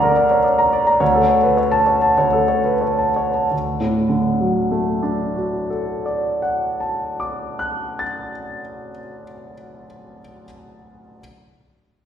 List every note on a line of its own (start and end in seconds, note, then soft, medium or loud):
0.00 1.01 D2 medium
0.00 0.12 D3 medium
0.00 0.03 A#4 medium
0.00 0.25 A#4 medium
0.00 0.31 C#5 soft
0.00 0.17 D5 medium
0.00 0.59 A#5 medium
0.17 0.39 D5 soft
0.31 0.45 C#5 soft
0.44 0.67 D5 soft
0.59 0.81 A#5 medium
0.73 0.95 D5 medium
0.87 1.01 A#5 medium
1.00 2.15 D2 medium
1.00 1.23 C#5 medium
1.15 1.38 A4 medium
1.29 1.52 C#5 medium
1.43 1.58 B4 soft
1.57 1.81 C#5 soft
1.72 1.96 A5 medium
1.86 2.11 C#5 medium
2.02 2.27 A5 medium
2.18 3.47 D2 medium
2.18 2.43 C#5 medium
2.33 2.58 A4 soft
2.48 2.75 C#5 soft
2.64 2.81 B4 soft
2.81 3.09 C#5 soft
2.99 3.27 A5 soft
3.16 3.45 C#5 soft
3.34 3.52 A5 soft
3.51 8.02 D2 soft
3.80 8.31 A2 soft
4.09 8.60 D3 soft
4.40 8.91 F#3 soft
4.71 9.22 A3 soft
5.03 9.53 D4 soft
5.36 9.86 F#4 soft
5.70 10.20 A4 soft
6.06 10.44 D5 soft
6.42 10.44 F#5 soft
6.80 10.44 A5 soft
7.20 10.44 D6 soft
7.59 10.44 F#6 soft
7.99 10.44 A6 soft